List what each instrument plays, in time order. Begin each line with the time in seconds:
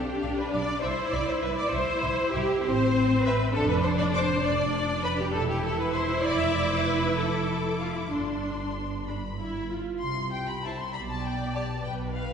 Already playing: viola section D4, cello section G4, violin section G4
0.22 double bass section B1, violin section F5
0.39 violin section B4, cello section B4
0.53 double bass section B1, cello section D5, violin section D5 F5
0.82 double bass section C2, viola section E4, violin section C5 E5, cello section C5
1.12 double bass section C2, violin section D5 E5, cello section D5
1.27 violin section C5, cello section C5
1.42 double bass section C2, violin section B4 E5, cello section B4
1.57 violin section D5, cello section D5
1.71 double bass section C2, viola section E4, violin section C5 E5, cello section C5
2.03 double bass section C2, violin section E5
2.33 double bass section C2, violin section G4 E5, cello section G4
2.64 double bass section A1, viola section C4, violin section C5, cello section C5
3.24 violin section B4 E5, cello section B4
3.54 double bass section F1, viola section D4, violin section A4, cello section A4
3.69 violin section B4, cello section B4
3.83 violin section C5, cello section C5
3.99 violin section D5, cello section D5
4.14 violin section C5 D6, cello section C5
4.43 double bass section F1, viola section D4, violin section D5, cello section D5
5.03 violin section B4 B5, cello section B4
5.19 violin section G4, cello section G4
5.34 double bass section E1, viola section E4, violin section A4, cello section A4
5.49 violin section G4, cello section G4
5.64 violin section A4, cello section A4
5.79 violin section B4, cello section B4
5.94 cello section C5, violin section C5 C6
6.25 double bass section F1, violin section D5 D6, cello section D5
6.40 violin section E5, cello section E5
6.55 violin section D5, cello section D5
6.70 violin section C5, cello section C5
6.85 violin section B4, cello section B4
7.17 violin section A4 D6, cello section A4
7.80 cello section F4, violin section F4
7.96 violin section E4, cello section E4
8.12 double bass section G1, viola section D4, violin section D4 C6, cello section D4
9.08 viola section D4, violin section B5
9.39 viola section E4
9.71 viola section F4
10.02 double bass section C2, cello section C3, violin section C6
10.34 violin section G5
10.49 violin section B5
10.64 violin section E4 C5 A5
10.81 violin section C6
10.94 double bass section B1, cello section B2, viola section D5, violin section B5
11.11 violin section A5
11.25 violin section G5
11.54 violin section G4 D5 A5
11.84 double bass section B1, cello section B2, viola section B4, violin section G5
12.14 violin section F5